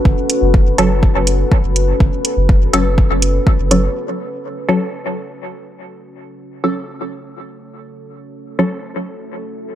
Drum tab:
HH |-x-x-x-x|-x-x-x-x|--------|--------|
BD |o-o-o-o-|o-o-o-o-|--------|--------|

HH |--------|
BD |--------|